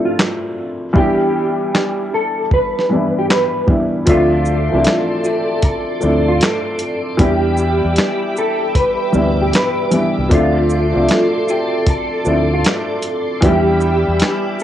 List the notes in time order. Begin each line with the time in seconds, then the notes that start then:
Already playing: F3 A3 C4 D4 E4 G4
0.05 F4
0.19 snare, clap
0.93 E3 G3 B3 D4 E4, kick
0.97 G4
1.75 snare, clap
2.14 A4
2.51 B4, kick
2.79 snare
2.89 E3 G3 B3 D4 E4
3.19 G4
3.30 B4, snare, clap
3.66 E3 G3 B3 D4 E4, kick
4.06 D2 F3 A3 C4 D4 F4 A4 D5 E5 C6 D6, kick, closed hi-hat
4.46 shaker
4.71 C2 E3 A3 C4 D4 E5
4.78 F3
4.84 snare, clap, closed hi-hat
5.24 G4, shaker
5.62 A4, kick, closed hi-hat
6.00 D2 F3 A3 C4 D4, shaker
6.04 E4
6.28 F4
6.41 snare, clap, closed hi-hat
6.79 closed hi-hat, shaker
7.17 E2 E3 G3 B3 D4 E4 G4 E5 B5, kick, closed hi-hat
7.57 shaker
7.85 E2
7.96 snare, clap, closed hi-hat
8.37 A4, shaker
8.75 B4, kick, closed hi-hat
9.12 D2 E3 G3 B3 D4 E4, shaker
9.41 G4
9.53 B4, snare, clap, closed hi-hat
9.90 E3 G3 B3 D4 E4, closed hi-hat, shaker
10.18 C2
10.29 D2 F3 A3 C4 D4 A4 D5 E5 C6, kick, closed hi-hat
10.34 F4
10.70 shaker
10.94 C2 F3 A3 C4 D4 E5
11.09 snare, clap, closed hi-hat
11.49 G4, shaker
11.86 A4, kick, closed hi-hat
12.24 D2 F3 A3 C4 D4 E4, shaker
12.54 F4
12.64 snare, clap, closed hi-hat
13.02 closed hi-hat, shaker
13.41 E2 E3 F3 B3 D4 E4 G4 E5 B5, kick, closed hi-hat
13.45 G3 G4
13.81 shaker
14.08 E2
14.19 snare, clap, closed hi-hat
14.60 shaker